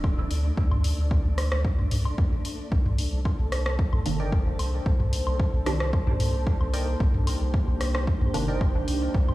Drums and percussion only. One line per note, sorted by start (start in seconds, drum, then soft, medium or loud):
0.04 kick loud
0.04 low woodblock soft
0.31 open hi-hat medium
0.57 kick loud
0.71 mid tom medium
0.71 low woodblock soft
0.84 open hi-hat medium
1.11 kick loud
1.38 cross-stick medium
1.38 open hi-hat medium
1.38 low woodblock soft
1.52 cross-stick medium
1.65 kick loud
1.79 mid tom medium
1.91 mid tom medium
1.91 open hi-hat medium
2.05 low woodblock soft
2.18 kick loud
2.45 open hi-hat medium
2.72 kick loud
2.86 mid tom loud
2.98 open hi-hat medium
3.25 kick loud
3.25 low woodblock soft
3.52 cross-stick medium
3.52 open hi-hat medium
3.66 cross-stick medium
3.79 kick loud
3.93 mid tom medium
3.93 low woodblock soft
4.06 open hi-hat medium
4.32 kick loud
4.59 open hi-hat medium
4.59 low woodblock soft
4.86 kick loud
5.00 mid tom medium
5.13 open hi-hat medium
5.27 low woodblock soft
5.40 kick loud
5.66 cross-stick medium
5.66 open hi-hat medium
5.80 cross-stick medium
5.93 kick loud
5.93 low woodblock soft
6.07 mid tom medium
6.20 mid tom medium
6.20 open hi-hat medium
6.47 kick loud
6.61 low woodblock soft
6.74 open hi-hat medium
7.00 kick loud
7.14 mid tom medium
7.27 open hi-hat medium
7.27 low woodblock soft
7.54 kick loud
7.81 cross-stick medium
7.81 open hi-hat medium
7.95 cross-stick medium
7.95 low woodblock soft
8.07 kick loud
8.21 mid tom medium
8.34 open hi-hat medium
8.61 kick loud
8.61 low woodblock soft
8.88 open hi-hat medium
9.14 kick loud
9.29 mid tom medium
9.29 low woodblock soft